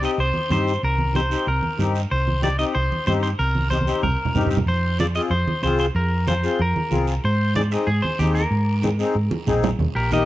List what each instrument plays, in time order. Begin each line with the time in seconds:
0.01 accordion C4 D#4 G4, clean electric guitar D#5, short guiro
0.18 fingered electric bass C2, clean electric guitar C5, high conga, long guiro
0.34 high conga
0.50 fingered electric bass G2, accordion C4 D#4 G4, clean electric guitar C5, high conga, short guiro
0.68 short guiro
0.82 fingered electric bass C2, clean electric guitar A#4, high conga, long guiro
0.98 high conga
1.14 accordion C4 D#4 G4, clean electric guitar C5, high conga, short guiro
1.30 accordion C4 D#4 G4, short guiro
1.47 fingered electric bass C2, clean electric guitar A#4, high conga, long guiro
1.63 high conga
1.78 fingered electric bass G2, accordion C4 D#4 G4, high conga, short guiro
1.95 short guiro
2.11 fingered electric bass C2, clean electric guitar C5, high conga, long guiro
2.28 high conga
2.42 accordion C4 D#4 G4, clean electric guitar D5, high conga, short guiro
2.58 accordion C4 D#4 G4, clean electric guitar D#5, short guiro
2.74 fingered electric bass C2, clean electric guitar C5, high conga, long guiro
2.92 high conga
3.06 fingered electric bass G2, accordion C4 D#4 G4, clean electric guitar C5, high conga, short guiro
3.23 clean electric guitar C5, short guiro
3.39 fingered electric bass C2, clean electric guitar A#4, high conga, long guiro
3.55 high conga
3.70 accordion C4 D#4 G4, clean electric guitar C5, high conga, short guiro
3.81 high conga
3.87 accordion C4 D#4 G4, short guiro
4.03 fingered electric bass C2, clean electric guitar A#4, low conga, long guiro
4.25 low conga
4.35 fingered electric bass G2, accordion C4 D#4 G4, low conga, short guiro
4.47 low conga, short guiro
4.57 low conga
4.66 fingered electric bass F2, clean electric guitar C5, high conga, long guiro
4.99 accordion C4 F4 G#4, clean electric guitar D5, high conga, short guiro
5.15 accordion C4 F4 G#4, clean electric guitar D#5, short guiro
5.30 fingered electric bass F2, clean electric guitar C5, high conga, long guiro
5.47 high conga
5.62 fingered electric bass C2, accordion C4 F4 G#4, clean electric guitar C5, high conga, short guiro
5.79 clean electric guitar C5, short guiro
5.95 fingered electric bass F2, clean electric guitar A#4, high conga, long guiro
6.27 accordion C4 F4 G#4, clean electric guitar C5, high conga, short guiro
6.43 accordion C4 F4 G#4, short guiro
6.59 fingered electric bass F2, clean electric guitar A#4, high conga, long guiro
6.76 high conga
6.91 fingered electric bass C2, accordion C4 F4 G#4, high conga, short guiro
7.07 short guiro
7.24 fingered electric bass G#2, clean electric guitar C5, high conga, long guiro
7.55 accordion C4 D#4 G#4, clean electric guitar D5, high conga, short guiro
7.71 accordion C4 D#4 G#4, clean electric guitar D#5, short guiro
7.87 fingered electric bass G#2, clean electric guitar G#4, high conga, long guiro
8.02 clean electric guitar C5, high conga
8.19 fingered electric bass D#2, accordion C4 D#4 G#4, clean electric guitar G4, high conga, short guiro
8.35 clean electric guitar A#4, short guiro
8.51 fingered electric bass G#2, high conga, long guiro
8.83 accordion C4 D#4 G#4, high conga, short guiro
8.99 accordion C4 D#4 G#4, short guiro
9.15 fingered electric bass G#2, high conga, long guiro
9.31 high conga
9.47 fingered electric bass A#1, accordion C4 D#4 G#4, low conga, short guiro
9.63 low conga, short guiro
9.79 fingered electric bass D#2, high conga, low conga, long guiro
9.95 fingered electric bass A#1, clean electric guitar G4 A#4
10.11 accordion A#3 D#4 G4, clean electric guitar A#4 D#5, high conga, short guiro